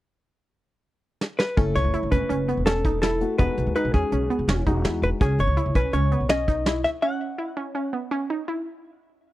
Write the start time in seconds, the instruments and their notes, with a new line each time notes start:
1.21 snare
1.39 hollow-body jazz guitar B4, snare
1.56 upright bass F#1, grand piano A3 E4 A4, synth arpeggio sound C#4, hollow-body jazz guitar A4, kick, closed hi-hat
1.75 upright bass C#2, hollow-body jazz guitar C#5, snare, closed hi-hat
1.84 upright bass F#1
1.94 synth arpeggio sound E4, closed hi-hat
2.03 upright bass F#1
2.11 upright bass E1, synth arpeggio sound C#4, hollow-body jazz guitar B4, kick, closed hi-hat
2.29 upright bass F#1, synth arpeggio sound C#4, closed hi-hat
2.48 synth arpeggio sound B3, closed hi-hat
2.57 upright bass E1
2.66 synth arpeggio sound C#4, hollow-body jazz guitar A4, snare, closed hi-hat
2.85 synth arpeggio sound D#4, kick, closed hi-hat
3.02 synth arpeggio sound E4, hollow-body jazz guitar A4, snare, closed hi-hat
3.21 grand piano A3 E4 F#4, closed hi-hat
3.38 upright bass E1, grand piano G#3 D#4 F#4, synth arpeggio sound B3, hollow-body jazz guitar B4, kick, closed hi-hat
3.57 upright bass B1, closed hi-hat
3.66 upright bass D#2
3.76 synth arpeggio sound D#4, hollow-body jazz guitar B4, closed hi-hat
3.85 upright bass B1
3.94 upright bass E2, synth arpeggio sound C#4, hollow-body jazz guitar G#4, kick, closed hi-hat
4.12 upright bass B1, synth arpeggio sound C#4, closed hi-hat
4.30 synth arpeggio sound B3, closed hi-hat
4.39 upright bass E1
4.48 upright bass E1, synth arpeggio sound C#4, snare, closed hi-hat
4.66 upright bass E1, grand piano G#3 D#4 F#4, synth arpeggio sound D#4, kick, closed hi-hat
4.84 upright bass E2, synth arpeggio sound E4, snare, closed hi-hat
5.02 upright bass E1, hollow-body jazz guitar B4, closed hi-hat
5.21 upright bass C#2, synth arpeggio sound C#4, hollow-body jazz guitar G#4, kick, closed hi-hat
5.39 upright bass G#1, hollow-body jazz guitar C#5, closed hi-hat
5.47 upright bass C#2
5.57 synth arpeggio sound E4, closed hi-hat
5.66 upright bass C#2
5.75 upright bass B1, synth arpeggio sound C#4, hollow-body jazz guitar B4, kick, closed hi-hat
5.93 upright bass C#2, synth arpeggio sound C#4, hollow-body jazz guitar C#5, closed hi-hat
6.12 synth arpeggio sound B3, closed hi-hat
6.20 upright bass B1
6.29 synth arpeggio sound C#4, hollow-body jazz guitar D#5, snare, closed hi-hat
6.48 synth arpeggio sound D#4, kick, closed hi-hat
6.66 synth arpeggio sound E4, snare, closed hi-hat
6.84 hollow-body jazz guitar E5, snare, closed hi-hat
7.02 synth arpeggio sound C#4, hollow-body jazz guitar F#5
7.38 synth arpeggio sound E4
7.57 synth arpeggio sound C#4
7.75 synth arpeggio sound C#4
7.93 synth arpeggio sound B3
7.97 hollow-body jazz guitar E5
8.11 synth arpeggio sound C#4
8.30 synth arpeggio sound D#4
8.48 synth arpeggio sound E4